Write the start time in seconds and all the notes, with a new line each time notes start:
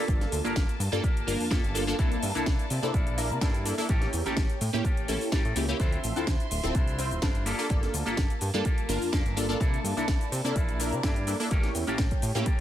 Already playing: A#3 F4 G4 A4 A5
0.08 G1 A#3 D4 F4 A4, kick, closed hi-hat, shaker
0.21 snare, closed hi-hat, shaker
0.32 D2, open hi-hat, shaker
0.44 G1 A#3 D4 F4 G4 A4 A#4, closed hi-hat, shaker
0.56 G1, kick, snare, closed hi-hat, shaker
0.69 closed hi-hat, shaker
0.80 G2, open hi-hat, shaker
0.92 G2 A#3 D4 F4 A4, shaker
1.03 A#3 F4 G4 A#4, kick, closed hi-hat, shaker
1.16 G1, closed hi-hat, shaker
1.27 G1 A#3 D4 F4 A#4, open hi-hat, shaker
1.40 F2, open hi-hat, shaker
1.50 F2 A#3 D4 F4 G4 A4, kick, snare, shaker
1.64 G1, closed hi-hat, shaker
1.75 A#3 D4 F4 A4, open hi-hat, shaker
1.87 A#3 D4 F4 A4, closed hi-hat, shaker
1.98 C2 A#3 D4 E4 A4 D5, kick, closed hi-hat, shaker
2.12 closed hi-hat, shaker
2.23 G2, open hi-hat, shaker
2.35 C2 A#3 D4 E4 A4, closed hi-hat, shaker
2.46 C2, kick, snare, closed hi-hat, shaker
2.59 closed hi-hat, shaker
2.70 C3, open hi-hat, shaker
2.82 C3 A#3 D4 E4 A4, closed hi-hat, shaker
2.94 A#1 A#3 D4 E4 A4, kick, closed hi-hat, shaker
3.07 closed hi-hat, shaker
3.17 A#3 D4 E4 A#4, open hi-hat, shaker
3.31 C3, shaker
3.41 G2 A#3 D4 E4 A4, kick, snare, closed hi-hat, shaker
3.54 closed hi-hat, shaker
3.65 A#3 D4 E4 A4, open hi-hat, shaker
3.78 A#3 D4 E4 A4, open hi-hat, shaker
3.89 A1 A#3 C#4 G4 A4 C#5, kick, closed hi-hat, shaker
4.01 snare, closed hi-hat, shaker
4.13 E2, open hi-hat, shaker
4.25 A1 A#3 C#4 E4 G4 A4, closed hi-hat, shaker
4.37 A1, kick, snare, closed hi-hat, shaker
4.50 closed hi-hat, shaker
4.61 A2, open hi-hat, shaker
4.73 A2 A#3 C#4 E4 G4, shaker
4.84 A#3 C#4 G4 A4, kick, closed hi-hat, shaker
4.97 A1, closed hi-hat, shaker
5.08 A1 A#3 C#4 E4 A4, open hi-hat, shaker
5.21 open hi-hat, shaker
5.32 A2 A#3 C#4 E4 G4 A4, kick, snare, closed hi-hat, shaker
5.45 A2, closed hi-hat, shaker
5.55 C#2 A#3 C#4 E4 G4, open hi-hat, shaker
5.68 A#3 C#4 E4 G4, closed hi-hat, shaker
5.79 D2 F3 C4 D4 E4 F4 C5 E5 C6, kick, closed hi-hat, shaker
5.92 closed hi-hat, shaker
6.04 A1, open hi-hat, shaker
6.16 C4 D4 E4 F4 A4 C5, closed hi-hat, shaker
6.27 D2, kick, snare, closed hi-hat, shaker
6.40 closed hi-hat, shaker
6.51 D1, open hi-hat, shaker
6.63 D1 C4 E4 F4 A4, closed hi-hat, shaker
6.75 C2 D4 E4 F4 C5, kick, closed hi-hat, shaker
6.88 closed hi-hat, shaker
6.99 C4 E4 F4 C5, open hi-hat, shaker
7.11 D1, closed hi-hat, shaker
7.22 G1 C4 D4 E4 F4 A4 C5, kick, snare, closed hi-hat, shaker
7.35 closed hi-hat, shaker
7.46 A#3 D4 F4 G4 A4 A5, open hi-hat, shaker
7.58 A#3 D4 F4 A4, open hi-hat, shaker
7.69 G1 A#3 D4 F4 A4, kick, closed hi-hat, shaker
7.83 snare, closed hi-hat, shaker
7.94 D2, open hi-hat, shaker
8.05 G1 A#3 D4 F4 G4 A4, closed hi-hat, shaker
8.17 G1, kick, snare, closed hi-hat, shaker
8.30 closed hi-hat, shaker
8.41 G2, open hi-hat, shaker
8.54 G2 A#3 D4 F4 A4, closed hi-hat, shaker
8.64 A#3 F4 G4 A4, kick, closed hi-hat, shaker
8.78 G1, closed hi-hat, shaker
8.89 G1 A#3 D4 F4 A#4, open hi-hat, shaker
9.02 F2, open hi-hat, shaker
9.12 F2 A#3 D4 F4 G4 A4 A#4, kick, snare, closed hi-hat, shaker
9.25 G1, closed hi-hat, shaker
9.36 A#3 D4 F4 A4, open hi-hat, shaker
9.49 A#3 D4 F4 A4, closed hi-hat, shaker
9.60 C2 A#3 D4 E4 A4 D5, kick, closed hi-hat, shaker
9.74 closed hi-hat, shaker
9.84 G2, open hi-hat, shaker
9.97 C2 A#3 D4 E4 A4, closed hi-hat, shaker
10.08 C2, kick, snare, closed hi-hat, shaker
10.21 closed hi-hat, shaker
10.32 C3, open hi-hat, shaker
10.44 C3 A#3 D4 E4 A4, closed hi-hat, shaker
10.55 A#1 A#3 D4 E4 A4, kick, closed hi-hat, shaker
10.69 closed hi-hat, shaker
10.79 A#3 D4 E4 A#4, open hi-hat, shaker
10.92 C3, closed hi-hat, shaker
11.03 G2 A#3 D4 E4 G4 A4, kick, snare, closed hi-hat, shaker
11.16 closed hi-hat, shaker
11.27 A#3 D4 E4 A4, open hi-hat, shaker
11.40 A#3 D4 E4 A4, open hi-hat, shaker
11.51 A1 A#3 C#4 E4 G4 A4 C#5, kick, closed hi-hat, shaker
11.63 snare, closed hi-hat, shaker
11.75 E2, open hi-hat, shaker
11.87 A1 A#3 C#4 E4 G4 A4, closed hi-hat, shaker
11.98 A1, kick, snare, closed hi-hat, shaker
12.11 kick, closed hi-hat, shaker
12.22 A2, open hi-hat, shaker
12.35 A2 A#3 C#4 E4 G4, closed hi-hat, shaker
12.46 A#3 C#4 G4 A4, kick, closed hi-hat, shaker